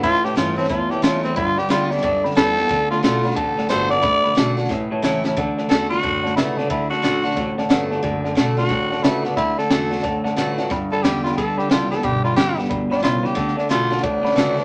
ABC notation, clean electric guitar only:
X:1
M:4/4
L:1/8
Q:"Swing" 1/4=180
K:D
V:1 name="Clean electric guitar" clef=bass
[A,,E,] [A,,E,] [A,,E,] [A,,E,] [A,,E,] [A,,E,] [A,,F,] [A,,F,] | [G,,D,] [G,,D,] [G,,D,] [G,,D,] [G,,D,] [G,,D,] [G,,E,] [G,,E,] | [D,A,] [D,A,] [D,A,] [D,A,] [D,A,] [D,A,] [D,B,] [D,B,] | [D,A,] [D,A,] [D,A,] [D,A,] [A,,E,] [A,,E,] [A,,F,] [A,,F,] |
[D,A,] [D,A,] [D,A,] [D,A,] [D,A,] [D,A,] [D,B,] [D,B,] | [D,A,] [D,A,] [D,A,] [D,A,] [D,A,] [D,A,] [D,B,] [D,B,] | [D,A,] [D,A,] [D,A,] [D,A,] [D,A,] [D,A,] [D,B,] [D,B,] | [D,A,] [D,A,] [D,A,] [D,A,] [D,A,] [D,A,] [D,B,] [D,B,] |
[G,,D,] [G,,D,] [G,,D,] [G,,D,] [G,,D,] [G,,D,] [G,,E,] [G,,E,] | [G,,D,] [G,,D,] [G,,D,] [G,,D,] [G,,D,] [G,,D,] [G,,E,] [G,,E,] | [D,A,] [D,A,] [D,A,] [D,A,] [D,A,] [D,A,] [D,B,] [D,B,] |]